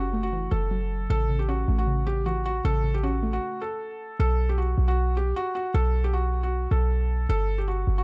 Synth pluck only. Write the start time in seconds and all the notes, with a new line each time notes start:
Already playing: E3 F#3 C#4
0.13 A3
0.33 E3
0.52 E3
0.71 F#3
1.10 C#3
1.29 C#3
1.49 C#4
1.68 A3
1.87 C#3
2.07 C#3
2.26 E3
2.65 C#3
2.84 C#3
3.03 C#4
3.23 A3